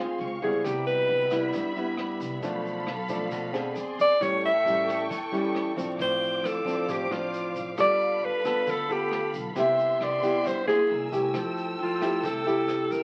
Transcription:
Already playing: D2 G#3 C4 G#4 F5 C6
0.00 F4
0.19 C#2 C4 F5 C#6, closed hi-hat
0.42 C#2 G3 B3 E4 G#4, kick, closed hi-hat
0.64 C2 C3 B3 G4 E5 B5, kick, cross-stick, closed hi-hat, shaker
0.87 B4, closed hi-hat, shaker
1.09 C2, closed hi-hat
1.30 G3 B3 E4, kick, cross-stick, shaker
1.53 G2, kick, closed hi-hat, shaker
1.75 G3 B3 E4, closed hi-hat, shaker
1.97 cross-stick, closed hi-hat
2.20 C2, kick, closed hi-hat, shaker
2.42 B1 B2 F3 A3 D4 A4 F5 B5, kick, closed hi-hat, shaker
2.65 closed hi-hat, shaker
2.86 B1, cross-stick, closed hi-hat
3.08 F3 A3 D4, kick, closed hi-hat, shaker
3.31 D2 B2, kick, closed hi-hat, shaker
3.53 C4 D4 G#4, cross-stick, shaker
3.75 E2 G#4 D5 C6, closed hi-hat, shaker
3.99 E2 D5, kick, closed hi-hat, shaker
4.20 A1 A2 G3 C#4 E4 A4 C#5 G5 C#6, kick, cross-stick, closed hi-hat, shaker
4.43 E5, closed hi-hat, shaker
4.65 A1 G3 C#4 E4, closed hi-hat, shaker
4.88 kick, cross-stick, shaker
5.10 E2 E3, kick, closed hi-hat, shaker
5.32 G3 C#4 E4, closed hi-hat, shaker
5.55 cross-stick, closed hi-hat
5.76 A1 F3 C4 D4, kick, closed hi-hat, shaker
5.98 A1 A2 C5 F5 D6, kick, closed hi-hat, shaker
6.22 closed hi-hat, shaker
6.43 A1 A4, cross-stick, closed hi-hat, shaker
6.65 F3 C4 D4, kick, closed hi-hat, shaker
6.88 A1 A2 G4, kick, closed hi-hat, shaker
7.10 F3 C4 D4 F4, cross-stick, closed hi-hat, shaker
7.34 closed hi-hat, shaker
7.55 A1, kick, closed hi-hat, shaker
7.78 G1 G3 B3 F4 A4 D5 B5, kick, cross-stick, closed hi-hat, shaker
8.00 shaker
8.21 G1 B4, closed hi-hat
8.44 B3 F4 A4, kick, cross-stick, shaker
8.66 D2 D3 A4, kick, closed hi-hat, shaker
8.89 B3 F4 G4 A4, closed hi-hat, shaker
9.12 cross-stick, closed hi-hat
9.34 B1, kick, closed hi-hat, shaker
9.55 C2 C3 B3 E4 G4 E5 C6, kick, closed hi-hat, shaker
9.78 closed hi-hat, shaker
10.00 C2 D5, cross-stick, closed hi-hat
10.22 B3 E4 G4, kick, closed hi-hat, shaker
10.44 G2 C5, kick, closed hi-hat, shaker
10.67 A#3 E4 G#4, cross-stick, shaker
10.89 C2 A#4 G#5 E6, closed hi-hat
11.12 C2 A3 E4 G4, kick, closed hi-hat, shaker
11.34 F2 F3 A4 G5, kick, cross-stick, closed hi-hat, shaker
11.57 closed hi-hat, shaker
11.78 F2, closed hi-hat
11.83 F4
12.01 A3 E4 G4, kick, cross-stick, closed hi-hat, shaker
12.23 C2 C3 A4, kick, closed hi-hat, shaker
12.46 A3 E4 G4, closed hi-hat, shaker
12.68 cross-stick, closed hi-hat, shaker
12.90 F2 A#4, kick, closed hi-hat, shaker

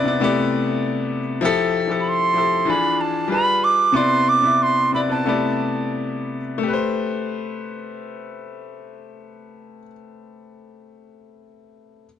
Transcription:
Already playing: C3 B3 E4 D5
0.04 C3 B3 E4 D5
0.20 C3 A3 B3 E4 G4
0.24 D5
1.41 F3 E4 G4
1.45 A4
1.87 F3 E4 G4
1.91 A4
2.00 B5
2.08 C6
2.34 F3 E4 G4
2.38 A4
2.65 E3 D4 F4
2.69 G#4 B5
3.01 A5
3.28 G3 F4 G#4
3.32 B4 B5
3.64 D6
3.92 C3 B3 E4 C6
3.96 D5
4.29 D6
4.41 C3 B3 E4
4.45 E5
4.63 C6
4.92 C3 B3 E4 D5 B5
5.08 C3 B3 E4 D5 A5
5.25 C3 A3 B3 E4 G4 D5
6.58 A3
6.63 G4
6.68 B4
6.73 C5

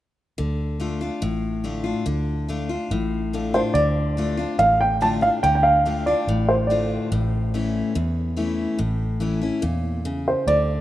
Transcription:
0.38 D2 D3
0.80 D3 A3 D4 F4
1.01 D4 F4
1.22 A1 A2
1.64 D3 A3 D4 F4
1.84 D4 F4
2.06 D2 D3
2.48 D3 A3 D4 F4
2.69 D4 F4
2.91 A1 A2
3.33 D3 A3 D4 F4
3.54 D4 F4 C5
3.74 D2 D3 D5
4.17 D3 A3 D4 F4
4.37 D4 F4
4.59 A1 A2 F5
4.81 G5
5.01 D3 A3 D4 F4 A5
5.21 D4 F4 F5
5.43 D2 D3 G5
5.55 G5
5.63 F5
5.86 D3 A3 D4 F4
6.06 D4 F4 D5
6.27 A1 A2
6.49 C5
6.67 D3 A3 D4 D5
6.71 F4
7.12 A1 A2
7.54 E3 A3 C#4 E4
7.95 E2
8.37 E3 A3 C#4 E4
8.79 A1 A2
9.20 E3 A3 C#4 E4
9.41 C#4 E4
9.62 E2 A#2
10.05 C#3
10.28 C5
10.47 D2 D3 D5

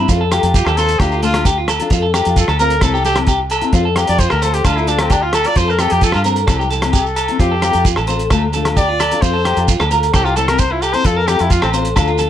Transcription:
0.09 F2 C4 F4 A4, kick, closed hi-hat, shekere
0.21 A4
0.31 F4 G4 A4, cross-stick, closed hi-hat, low agogo, shekere
0.43 F2 F4 A4, closed hi-hat, shekere
0.54 F4 G4, kick, closed hi-hat, shekere
0.65 D#2 A4, cross-stick, low agogo, shekere
0.77 C4 F4 A4 C5, closed hi-hat, shekere
0.89 closed hi-hat, shekere
0.99 D2 D4 F4 G4 A4, muted steel-string acoustic guitar stroke, muted clean electric guitar stroke, kick, cross-stick, closed hi-hat, low agogo, shekere
1.12 F4, shekere
1.22 A3 D4 F4 A4, closed hi-hat, shekere
1.34 D4 F4 A4, cross-stick, closed hi-hat, low agogo
1.45 G4, kick, closed hi-hat, shekere
1.58 F4
1.68 A4, cross-stick, closed hi-hat, low agogo, shekere
1.80 D4 F4 A4, closed hi-hat, shekere
1.90 F2 F4 A4, muted steel-string acoustic guitar stroke, kick, closed hi-hat, shekere
2.02 A4
2.14 C4 F4 G4 A4, cross-stick, closed hi-hat, low agogo, shekere
2.25 F2 F4 A4, closed hi-hat, shekere
2.36 F4 A4, kick, closed hi-hat, shekere
2.48 D2 A4, cross-stick, low agogo, shekere
2.59 C4 F4 A4 A#4, closed hi-hat, shekere
2.70 closed hi-hat, shekere
2.81 C2 G3 C4 E4 A4, kick, cross-stick, closed hi-hat, low agogo, shekere
2.94 G4, shekere
3.04 G3 C4 E4 G4 A4, closed hi-hat, shekere
3.15 C4 E4, cross-stick, closed hi-hat, low agogo
3.27 G4, kick, closed hi-hat, shekere
3.40 muted clean electric guitar stroke
3.50 A4, closed hi-hat, low agogo, shekere
3.61 C4 E4, closed hi-hat, shekere
3.73 F2 C4 F4 A4, kick, closed hi-hat, shekere
3.85 A4
3.96 C4 F4 G4 A4, cross-stick, closed hi-hat, low agogo, shekere
4.07 F2 F4 A4 D5, closed hi-hat, shekere
4.19 F4 C5, kick, closed hi-hat, shekere
4.30 D2 A4 A#4, cross-stick, low agogo, shekere
4.42 C4 F4 A4 C5, closed hi-hat, shekere
4.54 G4, closed hi-hat, shekere
4.65 D2 D4 F4 A4, kick, cross-stick, closed hi-hat, low agogo, shekere
4.77 E4 F4, shekere
4.87 D4 F4 A4, closed hi-hat, shekere
4.99 C4 F4 A4, cross-stick, closed hi-hat, low agogo
5.10 D4 G4, kick, closed hi-hat, shekere
5.22 F4
5.33 A4, cross-stick, closed hi-hat, low agogo, shekere
5.44 F4 A4 D5, closed hi-hat, shekere
5.55 F2 C4 F4 A4 C5, muted steel-string acoustic guitar stroke, kick, closed hi-hat, shekere
5.68 A4 A#4, shekere
5.79 C4 F4 G4 A4, cross-stick, closed hi-hat, low agogo, shekere
5.90 F2 F4 G4 A4, closed hi-hat, shekere
6.01 F4 A4, kick, closed hi-hat, shekere
6.12 G2 F4 A4, cross-stick, low agogo, shekere
6.24 C4 A4 A#4, closed hi-hat, shekere
6.36 closed hi-hat, shekere
6.47 C2 G3 C4 E4 A4, kick, cross-stick, closed hi-hat, low agogo, shekere
6.59 G4, shekere
6.70 G3 E4 A4, closed hi-hat, shekere
6.82 C4 E4, cross-stick, closed hi-hat, low agogo, shekere
6.93 G4 A4, kick, closed hi-hat, shekere
7.06 shekere
7.16 A4, closed hi-hat, low agogo, shekere
7.28 C4 E4, closed hi-hat
7.39 F2 C4 F4 G4, muted steel-string acoustic guitar stroke, kick, closed hi-hat, shekere
7.51 A4
7.62 C4 F4 G4 A4, cross-stick, closed hi-hat, low agogo, shekere
7.73 F2 F4 A4, closed hi-hat, shekere
7.85 F4, kick, closed hi-hat, shekere
7.96 A1 A4, cross-stick, low agogo, shekere
8.07 C4 F4 A4 C5, closed hi-hat, shekere
8.19 closed hi-hat, shekere
8.30 D2 A3 F4 A4, muted steel-string acoustic guitar stroke, kick, cross-stick, closed hi-hat, low agogo, shekere
8.53 A3 D4 F4 A4, closed hi-hat, shekere
8.65 D4 F4 A4, cross-stick, closed hi-hat, low agogo
8.77 G4 D5, kick, closed hi-hat, shekere
8.89 F4
9.00 A4, cross-stick, closed hi-hat, low agogo, shekere
9.12 D4 F4 A4, closed hi-hat, shekere
9.22 F2 C4 F4 A4 C5, kick, closed hi-hat, shekere
9.33 A4
9.45 C4 F4 G4 A4, cross-stick, closed hi-hat, low agogo
9.57 F2 F4 A4, closed hi-hat, shekere
9.68 F4, kick, closed hi-hat, shekere
9.80 D2 A4, cross-stick, low agogo, shekere
9.91 F4 A4 A#4, muted steel-string acoustic guitar stroke, closed hi-hat, shekere
10.03 closed hi-hat, shekere
10.14 C2 G3 C4 E4 G4 A4, kick, cross-stick, closed hi-hat, low agogo, shekere
10.25 F4 G4, shekere
10.36 G3 C4 E4 A4, closed hi-hat, shekere
10.48 C4 E4 A#4, cross-stick, closed hi-hat, low agogo
10.59 C5, muted clean electric guitar stroke, kick, closed hi-hat, shekere
10.71 E4 F4
10.82 G4 A4, closed hi-hat, low agogo, shekere
10.93 C4 E4 C5, closed hi-hat, shekere
11.04 F2 C4 F4 A4, muted clean electric guitar stroke, kick, closed hi-hat, shekere
11.16 A4 A#4
11.28 C4 F4 G4 A4, cross-stick, closed hi-hat, low agogo, shekere
11.39 F2 E4 F4 A4, closed hi-hat, shekere
11.50 F4, kick, closed hi-hat, shekere
11.62 A1 C4 A4, cross-stick, low agogo, shekere
11.73 C4 F4 A4 C5, closed hi-hat, shekere
11.85 closed hi-hat, shekere
11.96 D2 D4 F4 A4, kick, cross-stick, closed hi-hat, low agogo, shekere
12.07 F4, shekere
12.18 D4 F4 A4, closed hi-hat, shekere

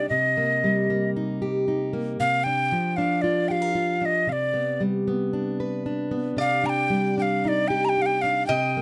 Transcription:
Already playing: G4
0.09 C3 D#5
0.37 A#3
0.64 G3
0.90 A#3
1.16 D#4
1.42 G4
1.68 D#4
1.93 A#3
2.20 C3 F5
2.44 D4 G5
2.72 F3
2.97 D4 F5
3.22 F4 D5
3.48 G4 F5 G5
3.62 A#4
3.75 F4
4.01 D4 F5
4.05 D#5
4.27 C3 F5
4.32 D5
4.54 B3
4.80 G3
5.08 B3
5.33 D4
5.60 B4
5.86 D4
6.11 B3
6.37 C3 D5 F5
6.64 D4 A#5
6.69 G5
6.90 G3
7.18 D4 G5
7.22 F5
7.44 D#4 D5 F5
7.68 G4 G5
7.85 A#5
7.89 G5
7.97 D#4
8.02 F5
8.06 G5
8.22 D4 F5
8.46 C3 D#5 G5
8.77 A#3

